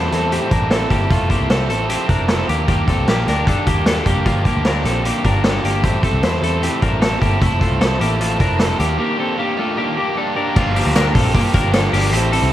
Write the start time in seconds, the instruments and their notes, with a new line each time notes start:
Already playing: overdriven electric guitar G3 C4 E4 A4, clean electric guitar C5
0.11 picked electric bass E2, overdriven electric guitar G3 C4 E4 A4, snare, closed hi-hat
0.31 overdriven electric guitar A2 E3 G3 C4 E4 A4, clean electric guitar G4, closed hi-hat
0.51 picked electric bass A1, overdriven electric guitar G3 C4 E4 A4, clean electric guitar D4 A#4, kick, closed hi-hat
0.70 overdriven electric guitar G3 C4 E4 A4, snare, closed hi-hat
0.90 picked electric bass G1, overdriven electric guitar G3 C4 E4 A4, clean electric guitar A#3 G4, kick, closed hi-hat
1.10 picked electric bass F1, overdriven electric guitar F3 C4 E4 A4, clean electric guitar A3 F4, kick, closed hi-hat
1.29 clean electric guitar A#3 G4, overdriven electric guitar C4 E4 A4, kick, closed hi-hat
1.40 picked electric bass C2
1.49 picked electric bass C2, overdriven electric guitar F3 C4 E4 A4, snare, closed hi-hat
1.69 picked electric bass A1, overdriven electric guitar C4 E4 A4, closed hi-hat
1.89 overdriven electric guitar F3 C4 E4 A4, clean electric guitar G4, closed hi-hat
2.08 picked electric bass F1, overdriven electric guitar C4 E4 A4, clean electric guitar D4 A#4, kick, closed hi-hat
2.28 overdriven electric guitar F3 C4 E4 A4, snare, closed hi-hat
2.47 picked electric bass D#2, overdriven electric guitar A#3 D4 G4, closed hi-hat
2.68 picked electric bass D#2, overdriven electric guitar D#3 G3 A#3 D4 G4, kick, closed hi-hat
2.87 overdriven electric guitar A#3 D4 G4, clean electric guitar C4 A4, kick, closed hi-hat
2.98 picked electric bass C2
3.07 picked electric bass A#1, overdriven electric guitar G3 A#3 D4 G4, snare, closed hi-hat
3.27 picked electric bass D2, overdriven electric guitar A#3 D4 G4, clean electric guitar A#4, snare, closed hi-hat
3.47 overdriven electric guitar D#3 G3 A#3 D4 G4, clean electric guitar A4, kick, closed hi-hat
3.66 picked electric bass D#2, overdriven electric guitar A#3 D4 G4, kick, closed hi-hat
3.86 overdriven electric guitar G3 A#3 D4 G4, clean electric guitar A4, snare, closed hi-hat
4.05 picked electric bass F1, overdriven electric guitar A#3 D4 G4, kick, closed hi-hat
4.25 picked electric bass G1, overdriven electric guitar G2 D3 F3 A#3 D4 G4, clean electric guitar F4, kick, closed hi-hat
4.44 overdriven electric guitar F3 A#3 D4 G4, kick, closed hi-hat
4.56 picked electric bass D2
4.64 picked electric bass D2, overdriven electric guitar F3 A#3 D4 G4, clean electric guitar A#4, snare, closed hi-hat
4.85 picked electric bass A#1, overdriven electric guitar F3 A#3 D4 G4, clean electric guitar C4 A4, snare, closed hi-hat
5.04 overdriven electric guitar G2 D3 F3 A#3 D4 G4, closed hi-hat
5.24 picked electric bass G1, overdriven electric guitar F3 A#3 D4 G4, clean electric guitar A#4, kick, closed hi-hat
5.44 overdriven electric guitar F3 A#3 D4 G4, clean electric guitar A4, snare, closed hi-hat
5.64 picked electric bass G1, overdriven electric guitar F3 A#3 D4 G4, closed hi-hat
5.83 picked electric bass A1, overdriven electric guitar A2 E3 G3 C4 E4 A4, clean electric guitar G4, kick, closed hi-hat
6.03 overdriven electric guitar G3 C4 E4 A4, kick, closed hi-hat
6.13 picked electric bass C2
6.22 picked electric bass E2, overdriven electric guitar G3 C4 E4 A4, clean electric guitar C5, snare, closed hi-hat
6.42 picked electric bass E2, overdriven electric guitar G3 C4 E4 A4, closed hi-hat
6.62 overdriven electric guitar A2 E3 G3 C4 E4 A4, clean electric guitar G4, closed hi-hat
6.82 picked electric bass A1, overdriven electric guitar G3 C4 E4 A4, clean electric guitar D4 A#4, kick, closed hi-hat
7.00 overdriven electric guitar G3 C4 E4 A4, snare, closed hi-hat
7.21 picked electric bass G1, overdriven electric guitar G3 C4 E4 A4, clean electric guitar A#3 G4, kick, closed hi-hat
7.40 picked electric bass F1, overdriven electric guitar F3 C4 E4 A4, clean electric guitar A3, kick, closed hi-hat
7.60 clean electric guitar A3 F4, overdriven electric guitar C4 E4 A4, kick, closed hi-hat
7.70 picked electric bass C2
7.80 picked electric bass C2, overdriven electric guitar F3 C4 E4 A4, snare, closed hi-hat
7.99 picked electric bass A1, clean electric guitar A#3 G4, overdriven electric guitar C4 E4 A4, closed hi-hat
8.20 overdriven electric guitar F3 C4 E4 A4, clean electric guitar A3 F4, closed hi-hat
8.39 picked electric bass F1, overdriven electric guitar C4 E4 A4, clean electric guitar D4 A#4, kick, closed hi-hat
8.58 overdriven electric guitar F3 C4 E4 A4, snare, closed hi-hat
8.79 picked electric bass D#2, overdriven electric guitar A#3 D4 G4, closed hi-hat
8.97 overdriven electric guitar D#3 G3 A#3 D4 G4
9.17 overdriven electric guitar A#3 D4 G4, clean electric guitar C4 A4
9.38 overdriven electric guitar G3 A#3 D4 G4
9.57 clean electric guitar A3 F4, overdriven electric guitar A#3 D4 G4
9.77 overdriven electric guitar D#3 G3 A#3 D4 G4
9.96 overdriven electric guitar A#3 D4 G4
10.16 overdriven electric guitar G3 A#3 D4 G4, clean electric guitar A4
10.36 overdriven electric guitar A#3 D4 G4, clean electric guitar A#4
10.56 picked electric bass G1, overdriven electric guitar G2 D3 F3 A#3 D4 G4, clean electric guitar F4, kick, crash, tambourine
10.75 overdriven electric guitar F3 A#3 D4 G4, hi-hat pedal, open hi-hat, tambourine
10.86 picked electric bass D2
10.95 picked electric bass D2, overdriven electric guitar G2 D3 F3 A#3 D4 G4, clean electric guitar A#4, snare, hi-hat pedal, open hi-hat, tambourine
11.14 picked electric bass A#1, overdriven electric guitar F3 A#3 D4 G4, clean electric guitar C4 A4, kick, hi-hat pedal, open hi-hat
11.33 overdriven electric guitar F3 A#3 D4 G4, kick, hi-hat pedal, open hi-hat, tambourine
11.52 picked electric bass G1, overdriven electric guitar F3 A#3 D4 G4, clean electric guitar A#4, kick, hi-hat pedal, open hi-hat, tambourine
11.72 overdriven electric guitar G2 D3 F3 A#3 D4 G4, clean electric guitar A4, snare, hi-hat pedal, open hi-hat, tambourine
11.92 picked electric bass G1, overdriven electric guitar F3 A#3 D4 G4, hi-hat pedal, open hi-hat, tambourine
12.11 picked electric bass A1, overdriven electric guitar A2 E3 G3 C4 E4 A4, clean electric guitar G4, hi-hat pedal, open hi-hat, tambourine
12.31 overdriven electric guitar G3 C4 E4 A4, hi-hat pedal, open hi-hat, tambourine
12.42 picked electric bass C2